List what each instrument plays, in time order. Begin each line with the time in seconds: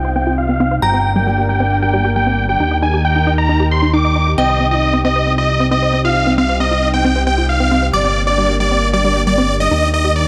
Already playing: analog synth bass C2, analog synth pad C3 C4 D#4 F4, supersaw synth G5
0.05 synth arpeggio sound C5
0.16 synth arpeggio sound C4, supersaw synth G5
0.27 synth arpeggio sound F4
0.38 supersaw synth F5
0.49 synth arpeggio sound C4
0.60 synth arpeggio sound C4
0.71 synth arpeggio sound C5
0.82 analog synth bass G1, synth arpeggio sound G3, analog synth pad A#3 D4 G4, supersaw synth G5, synth bell A#5
0.94 synth arpeggio sound C4
1.16 synth arpeggio sound G3, supersaw synth G5
1.27 synth arpeggio sound G3
1.38 synth arpeggio sound G4
1.49 synth arpeggio sound G3, supersaw synth G5
1.60 synth arpeggio sound C4
1.82 synth arpeggio sound G3, supersaw synth G5
1.94 synth arpeggio sound G3
2.05 synth arpeggio sound G4
2.16 synth arpeggio sound G3, supersaw synth G5
2.27 synth arpeggio sound C4
2.49 synth arpeggio sound G3, supersaw synth G5
2.60 analog synth bass D#2, analog synth pad D#3 D#4 A#4, synth arpeggio sound D#4
2.71 synth arpeggio sound D#5
2.82 synth arpeggio sound D#4, supersaw synth G#5
2.94 synth arpeggio sound G4
3.05 supersaw synth G5
3.16 synth arpeggio sound D#4
3.27 synth arpeggio sound D#4
3.38 synth arpeggio sound D#5, supersaw synth A#5
3.49 synth arpeggio sound D#4
3.60 synth arpeggio sound G4
3.71 supersaw synth C6
3.82 synth arpeggio sound D#4
3.93 synth arpeggio sound D#4, supersaw synth D6
4.05 synth arpeggio sound D#5
4.16 synth arpeggio sound D#4
4.27 synth arpeggio sound G4
4.38 analog synth bass C2, analog synth pad C3 C4 D#4, synth arpeggio sound C4, supersaw synth D#5, synth bell G5
4.49 synth arpeggio sound C5
4.60 synth arpeggio sound C4
4.71 synth arpeggio sound F4, supersaw synth D#5
4.94 synth arpeggio sound C4
5.05 synth arpeggio sound C4, supersaw synth D#5
5.16 synth arpeggio sound C5
5.27 synth arpeggio sound C4
5.38 synth arpeggio sound F4, supersaw synth D#5
5.60 synth arpeggio sound C4
5.71 synth arpeggio sound C4, supersaw synth D#5
5.82 synth arpeggio sound C5
5.94 synth arpeggio sound C4
6.05 synth arpeggio sound F4, supersaw synth F5
6.27 synth arpeggio sound C4
6.38 synth arpeggio sound C4, supersaw synth F5
6.49 synth arpeggio sound C5
6.60 synth arpeggio sound C4, supersaw synth D#5
6.71 synth arpeggio sound F4
6.94 synth arpeggio sound C4, supersaw synth G5
7.05 synth arpeggio sound C4
7.16 synth arpeggio sound C5
7.27 synth arpeggio sound C4, supersaw synth G5
7.38 synth arpeggio sound F4
7.49 supersaw synth F5
7.60 synth arpeggio sound C4
7.71 synth arpeggio sound C4
7.82 synth arpeggio sound C5
7.93 analog synth bass G1, synth arpeggio sound G3, analog synth pad A#3 D4, supersaw synth D5, synth bell D6
8.05 synth arpeggio sound C4
8.27 synth arpeggio sound G3, supersaw synth D5
8.38 synth arpeggio sound G3
8.49 synth arpeggio sound G4
8.60 synth arpeggio sound G3, supersaw synth D5
8.71 synth arpeggio sound C4
8.93 synth arpeggio sound G3, supersaw synth D5
9.05 synth arpeggio sound G3
9.16 synth arpeggio sound G4
9.27 synth arpeggio sound G3, supersaw synth D5
9.38 synth arpeggio sound C4
9.60 synth arpeggio sound G3, supersaw synth D#5
9.71 analog synth bass D#2, analog synth pad D#3 D#4 A#4, synth arpeggio sound D#4
9.82 synth arpeggio sound D#5
9.94 synth arpeggio sound D#4, supersaw synth D#5
10.05 synth arpeggio sound G4
10.16 supersaw synth D5